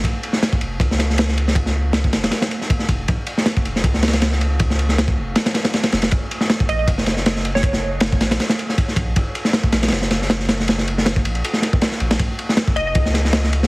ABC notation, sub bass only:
X:1
M:4/4
L:1/8
Q:"Swing 16ths" 1/4=158
K:Ebm
V:1 name="Sub bass" clef=bass
B,,, z2 F,,, D,,4- | D,,3 F,,, z3 F,,, | B,,, z2 F,,, D,,4- | D,,3 F,,, z3 F,,, |
E,,, z2 B,,, G,,,4- | G,,,3 B,,, z3 B,,, | E,,, z2 B,,, G,,,4- | G,,,3 B,,, z3 B,,, |
B,,, z2 F,,, D,,4 |]